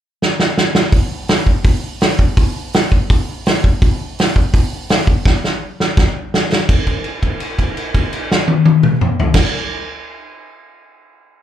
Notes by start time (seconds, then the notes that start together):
0.22 snare
0.39 snare
0.57 snare
0.75 snare
0.92 kick, open hi-hat
1.28 snare, open hi-hat
1.47 kick
1.64 kick, open hi-hat
2.01 snare, open hi-hat
2.19 kick
2.37 kick, open hi-hat
2.73 snare, open hi-hat
2.92 kick
3.10 kick, open hi-hat
3.46 snare, open hi-hat
3.64 kick
3.82 kick, open hi-hat
4.19 snare, open hi-hat
4.36 kick
4.54 kick, open hi-hat
4.89 snare, open hi-hat
5.07 kick
5.25 kick, snare
5.44 snare
5.80 snare
5.97 kick, snare
6.34 snare
6.52 snare
6.69 kick, crash
6.87 kick, crash
7.04 crash
7.23 kick, crash
7.40 crash
7.59 kick, crash
7.77 crash
7.94 kick, crash
8.13 crash
8.31 snare
8.48 high tom
8.65 high tom
8.83 mid tom
9.01 mid tom
9.20 floor tom
9.34 kick, snare, crash